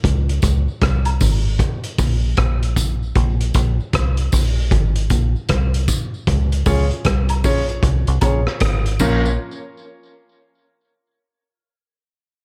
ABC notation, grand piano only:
X:1
M:4/4
L:1/8
Q:"Swing 16ths" 1/4=77
K:Db
V:1 name="Grand piano"
z8 | z8 | z [DFAd] z [DFAd] z [DFAd] z [DFBd] | z8 |]